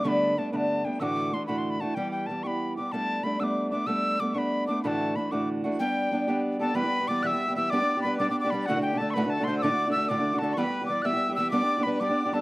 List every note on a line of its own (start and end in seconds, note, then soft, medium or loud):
0.04 0.36 G2 medium
0.04 0.37 D3 medium
0.04 0.35 G3 medium
0.04 0.37 A3 medium
0.04 0.36 B3 medium
0.04 0.37 D4 medium
0.04 0.09 C#6 medium
0.08 0.40 B5 medium
0.36 0.51 G3 soft
0.36 0.52 A3 medium
0.36 0.52 B3 soft
0.36 0.51 D4 soft
0.36 0.52 A5 medium
0.52 0.86 G2 soft
0.52 0.85 D3 soft
0.52 0.85 G3 soft
0.52 0.84 A3 medium
0.52 0.85 B3 medium
0.52 0.83 D4 soft
0.52 0.86 A5 medium
0.52 0.57 B5 medium
0.84 1.00 G3 soft
0.84 1.00 A3 soft
0.84 1.00 B3 soft
0.84 1.00 D4 soft
0.84 1.01 G5 medium
1.00 1.32 D2 medium
1.00 1.33 A2 medium
1.00 1.32 E3 medium
1.00 1.32 A3 medium
1.00 1.33 D4 medium
1.00 1.33 F#4 medium
1.00 1.35 D6 loud
1.00 1.04 E6 loud
1.33 1.48 E3 soft
1.33 1.48 A3 soft
1.33 1.47 D4 medium
1.33 1.47 F#4 soft
1.33 1.46 C6 medium
1.46 1.81 D2 soft
1.46 1.81 A2 soft
1.46 1.81 E3 medium
1.46 1.81 A3 soft
1.46 1.80 D4 soft
1.46 1.80 F#4 medium
1.46 1.60 B5 medium
1.58 1.72 C6 medium
1.70 1.82 B5 medium
1.80 1.95 E3 soft
1.80 1.96 A3 soft
1.80 1.96 D4 soft
1.80 1.96 F#4 medium
1.80 1.96 A5 medium
1.95 2.27 E3 medium
1.95 2.29 G3 medium
1.95 2.30 B3 medium
1.95 2.31 G4 medium
1.95 2.11 G5 medium
2.12 2.28 G5 medium
2.26 2.44 E3 soft
2.26 2.44 G3 soft
2.26 2.44 B3 soft
2.26 2.45 A5 medium
2.31 2.43 G4 medium
2.43 2.78 E3 soft
2.43 2.79 G3 soft
2.43 2.78 B3 soft
2.43 2.77 G4 medium
2.43 2.76 B5 medium
2.43 2.48 C#6 medium
2.77 2.91 G3 soft
2.77 2.92 B3 soft
2.77 2.92 G4 soft
2.77 2.93 D6 medium
2.92 3.22 G3 medium
2.92 3.24 A3 medium
2.92 3.24 B3 medium
2.92 3.26 D4 medium
2.92 3.25 A5 medium
3.23 3.39 G3 soft
3.23 3.40 A3 soft
3.23 3.39 B3 soft
3.23 3.38 D4 medium
3.23 3.41 B5 medium
3.40 3.73 G3 soft
3.40 3.74 A3 soft
3.40 3.72 B3 soft
3.40 3.71 D4 soft
3.40 3.70 D6 medium
3.40 3.45 E6 medium
3.71 3.86 A3 soft
3.71 3.87 B3 soft
3.71 3.87 D4 medium
3.71 3.88 D6 medium
3.87 4.18 G3 medium
3.87 4.20 A3 medium
3.87 4.21 B3 medium
3.87 4.22 D4 medium
3.87 4.21 E6 loud
4.19 4.35 G3 soft
4.19 4.35 A3 soft
4.19 4.34 B3 medium
4.19 4.33 D4 soft
4.19 4.36 D6 medium
4.35 4.69 G3 soft
4.35 4.68 A3 soft
4.35 4.68 B3 medium
4.35 4.68 D4 medium
4.35 4.67 B5 medium
4.35 4.39 C#6 medium
4.67 4.83 A3 soft
4.67 4.84 B3 soft
4.67 4.84 D4 medium
4.67 4.82 D6 medium
4.83 5.16 D2 medium
4.83 5.16 A2 medium
4.83 5.15 E3 medium
4.83 5.15 A3 medium
4.83 5.16 D4 medium
4.83 5.17 F#4 medium
4.83 4.88 B5 medium
4.87 5.17 A5 medium
5.16 5.31 E3 soft
5.16 5.31 A3 medium
5.16 5.31 D4 soft
5.16 5.31 F#4 soft
5.16 5.33 B5 medium
5.31 5.65 D2 soft
5.31 5.65 A2 soft
5.31 5.65 E3 soft
5.31 5.65 A3 medium
5.31 5.64 D4 medium
5.31 5.63 F#4 soft
5.31 5.49 D6 medium
5.64 5.79 E3 soft
5.64 5.80 A3 soft
5.64 5.80 D4 medium
5.64 5.79 F#4 medium
5.79 6.11 G3 medium
5.79 6.12 B3 medium
5.79 6.12 D4 medium
5.79 6.13 G4 medium
5.79 6.41 G5 loud
6.11 6.27 G3 soft
6.11 6.27 B3 soft
6.11 6.27 D4 medium
6.11 6.26 G4 soft
6.28 6.74 G3 medium
6.28 6.61 B3 medium
6.28 6.59 D4 medium
6.28 6.59 G4 medium
6.59 6.74 B3 soft
6.59 6.75 D4 soft
6.59 6.75 G4 medium
6.59 6.74 A4 medium
6.59 6.77 A5 medium
6.74 6.83 E3 medium
6.74 6.84 G3 medium
6.74 6.84 B3 medium
6.74 6.82 G4 medium
6.74 7.06 B4 medium
6.74 7.09 B5 loud
6.84 7.01 G3 soft
6.84 7.00 B3 soft
6.84 6.99 G4 medium
7.00 7.08 G3 soft
7.00 7.09 B3 soft
7.00 7.08 G4 soft
7.08 7.22 E3 soft
7.08 7.23 G3 medium
7.08 7.24 B3 medium
7.08 7.24 G4 medium
7.08 7.24 D5 medium
7.08 7.24 D6 loud
7.23 7.32 E3 medium
7.23 7.32 G3 medium
7.23 7.32 B3 medium
7.23 7.31 G4 medium
7.23 7.53 E5 loud
7.23 7.56 E6 medium
7.23 7.28 F#6 medium
7.32 7.49 G3 soft
7.32 7.48 B3 soft
7.32 7.47 G4 soft
7.48 7.55 G3 soft
7.48 7.56 B3 medium
7.48 7.56 G4 medium
7.55 7.71 E3 medium
7.55 7.71 G3 medium
7.55 7.72 B3 medium
7.55 7.72 G4 medium
7.55 7.71 E5 medium
7.55 7.72 E6 medium
7.70 7.80 G3 medium
7.70 7.81 B3 medium
7.70 7.81 D4 medium
7.70 8.04 D5 loud
7.70 8.01 D6 loud
7.74 7.79 G4 medium
7.80 7.98 B3 soft
7.80 7.97 D4 soft
7.80 7.96 G4 soft
7.97 8.04 B3 soft
7.97 8.05 D4 medium
7.97 8.04 G4 medium
8.02 8.18 G3 medium
8.02 8.19 B3 medium
8.02 8.19 D4 medium
8.02 8.19 B4 medium
8.02 8.17 B5 medium
8.07 8.20 G4 medium
8.19 8.28 G3 medium
8.19 8.28 B3 medium
8.19 8.28 D4 medium
8.19 8.27 G4 medium
8.19 8.30 D5 medium
8.19 8.30 D6 medium
8.29 8.45 B3 soft
8.29 8.44 D4 medium
8.29 8.43 G4 soft
8.29 8.39 D6 medium
8.40 8.67 D5 medium
8.40 8.52 D6 medium
8.44 8.51 B3 soft
8.44 8.52 D4 medium
8.44 8.52 G4 medium
8.50 8.67 G3 medium
8.50 8.67 B3 medium
8.50 8.68 D4 medium
8.50 8.68 G4 medium
8.50 8.67 B5 medium
8.66 8.76 D2 medium
8.66 8.76 A2 medium
8.66 8.76 D3 medium
8.66 8.76 A3 medium
8.66 8.76 D4 medium
8.66 8.83 F#4 medium
8.66 8.75 F#4 medium
8.66 8.81 F#5 loud
8.76 8.93 D3 soft
8.76 8.93 A3 soft
8.76 8.92 D4 soft
8.76 8.92 F#4 soft
8.82 9.00 G4 medium
8.82 8.99 G5 medium
8.93 8.99 D3 soft
8.93 9.00 A3 soft
8.93 9.00 D4 soft
8.93 9.00 F#4 medium
8.98 9.15 D3 medium
8.98 9.15 A3 medium
8.98 9.15 A4 medium
8.98 9.12 A5 medium
9.02 9.16 D4 medium
9.02 9.16 F#4 soft
9.10 9.32 B4 medium
9.10 9.31 B5 loud
9.10 9.15 C#6 medium
9.16 9.24 D2 medium
9.16 9.24 A2 medium
9.16 9.24 D3 medium
9.16 9.24 A3 medium
9.16 9.24 D4 medium
9.16 9.23 F#4 medium
9.24 9.41 D3 soft
9.24 9.40 A3 soft
9.24 9.39 D4 soft
9.24 9.38 F#4 medium
9.30 9.47 A4 medium
9.30 9.46 A5 medium
9.40 9.46 D3 medium
9.40 9.46 A3 medium
9.40 9.47 D4 medium
9.40 9.47 F#4 soft
9.44 9.62 D3 medium
9.44 9.62 A3 medium
9.44 9.62 C5 medium
9.44 9.58 C6 medium
9.48 9.63 D4 medium
9.48 9.63 F#4 medium
9.58 9.71 D2 medium
9.58 9.96 D5 medium
9.58 9.90 D6 loud
9.58 9.63 E6 loud
9.63 9.71 A2 medium
9.63 9.71 D3 medium
9.63 9.71 A3 medium
9.63 9.70 D4 loud
9.63 9.69 F#4 medium
9.70 9.88 D3 soft
9.70 9.88 A3 soft
9.70 9.87 D4 medium
9.70 9.86 F#4 soft
9.87 9.94 D3 soft
9.87 9.95 A3 soft
9.87 9.95 D4 soft
9.87 9.95 F#4 soft
9.91 10.09 D3 medium
9.91 10.09 E5 medium
9.91 10.05 E6 medium
9.96 10.09 A3 medium
9.96 10.10 D4 medium
9.96 10.10 F#4 medium
10.05 10.18 D2 medium
10.05 10.39 D5 medium
10.05 10.40 D6 medium
10.05 10.10 E6 medium
10.10 10.18 A2 medium
10.10 10.19 D3 medium
10.10 10.19 A3 medium
10.10 10.18 D4 medium
10.10 10.17 F#4 medium
10.18 10.35 D3 soft
10.18 10.34 A3 soft
10.18 10.33 D4 soft
10.18 10.32 F#4 soft
10.33 10.40 D3 soft
10.33 10.41 A3 soft
10.33 10.42 D4 medium
10.33 10.42 F#4 medium
10.39 10.56 D3 medium
10.39 10.57 A3 medium
10.39 10.56 A4 medium
10.39 10.55 A5 medium
10.43 10.58 D4 medium
10.43 10.58 F#4 medium
10.54 10.66 E3 medium
10.54 10.66 G3 medium
10.54 10.91 B4 medium
10.54 10.59 C#6 loud
10.58 10.66 B3 medium
10.58 10.64 G4 medium
10.58 10.86 B5 loud
10.66 10.83 G3 soft
10.66 10.82 B3 medium
10.66 10.80 G4 soft
10.81 10.89 G3 soft
10.81 10.90 B3 soft
10.81 10.90 G4 soft
10.86 11.03 E3 soft
10.86 11.03 G3 medium
10.86 11.05 D5 medium
10.86 11.03 D6 medium
10.91 11.04 B3 medium
10.91 11.05 G4 medium
11.02 11.13 E3 medium
11.02 11.14 G3 medium
11.02 11.14 B3 medium
11.02 11.12 G4 medium
11.02 11.35 E5 medium
11.02 11.35 E6 loud
11.02 11.06 F#6 loud
11.13 11.31 G3 soft
11.13 11.29 B3 medium
11.13 11.28 G4 medium
11.29 11.38 G3 soft
11.29 11.38 B3 medium
11.29 11.37 G4 medium
11.35 11.51 E3 medium
11.35 11.51 G3 medium
11.35 11.53 E5 medium
11.35 11.50 E6 medium
11.39 11.51 B3 medium
11.39 11.53 G4 medium
11.51 11.61 G3 medium
11.51 11.61 B3 medium
11.51 11.62 D4 medium
11.51 11.61 G4 medium
11.51 11.83 D5 medium
11.51 11.85 D6 loud
11.62 11.79 B3 soft
11.62 11.78 D4 soft
11.62 11.77 G4 medium
11.78 11.85 B3 soft
11.78 11.86 D4 medium
11.78 11.85 G4 medium
11.83 11.99 G3 medium
11.83 12.00 B3 medium
11.83 12.00 D4 medium
11.83 12.01 B4 medium
11.83 12.02 B5 medium
11.88 12.01 G4 medium
12.00 12.09 G3 medium
12.00 12.09 B3 medium
12.00 12.09 D4 medium
12.00 12.08 G4 medium
12.00 12.32 D5 medium
12.00 12.35 D6 medium
12.09 12.26 B3 soft
12.09 12.25 D4 medium
12.09 12.24 G4 medium
12.26 12.32 B3 soft
12.26 12.33 D4 soft
12.26 12.33 G4 medium
12.32 12.41 G3 medium
12.32 12.41 B3 medium
12.32 12.41 D4 medium
12.32 12.41 G4 medium
12.32 12.41 A4 medium
12.32 12.41 A5 medium